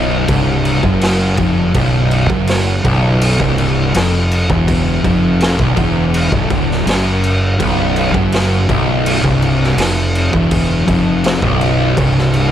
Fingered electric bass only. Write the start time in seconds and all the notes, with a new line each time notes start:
Already playing: B0
0.29 C1
0.83 F#1
1.38 F1
1.75 B0
2.29 F#1
2.85 B0
3.40 C1
3.95 F1
4.49 E1
5.04 F1
5.59 B0
5.77 E1
6.32 B0
6.50 D1
6.86 F#1
7.59 B0
8.14 F#1
8.69 B0
9.24 C1
9.77 F1
10.33 E1
10.87 F1
11.42 B0
11.97 C1